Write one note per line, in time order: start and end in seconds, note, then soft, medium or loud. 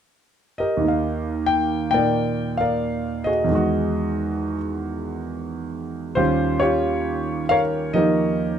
0.58 1.89 G4 soft
0.58 1.89 A#4 soft
0.58 1.44 D#5 medium
0.77 3.47 D#2 soft
0.77 3.47 D#3 soft
0.84 3.50 A#3 soft
0.84 2.56 F5 soft
1.46 1.89 G5 medium
1.91 3.49 A#2 soft
1.91 2.59 A#4 medium
1.91 2.59 D5 medium
1.91 2.55 G5 medium
1.95 3.50 D#4 soft
2.57 3.45 A#4 soft
2.57 3.45 D5 soft
2.57 3.27 F5 medium
3.24 3.53 F#4 soft
3.24 4.56 G#4 soft
3.24 4.55 D#5 medium
3.44 6.14 E2 medium
3.44 6.15 D#3 soft
3.51 6.17 G#3 soft
3.51 6.19 F#4 medium
6.15 8.59 D#2 soft
6.15 7.92 D#3 soft
6.15 8.59 G3 soft
6.15 8.59 C#4 soft
6.15 6.60 F4 medium
6.15 6.60 G4 medium
6.15 6.57 C5 medium
6.60 7.91 F4 medium
6.60 7.90 G4 medium
6.60 7.45 C#5 medium
7.49 7.94 A#4 medium
7.49 8.59 C#5 medium
7.49 7.59 F5 medium
7.94 8.59 D#3 soft
7.94 8.59 F3 soft
7.94 8.59 A#3 soft
7.94 8.59 D#4 soft
7.94 8.59 G4 medium
7.94 8.59 A#4 medium
7.94 8.59 D#5 medium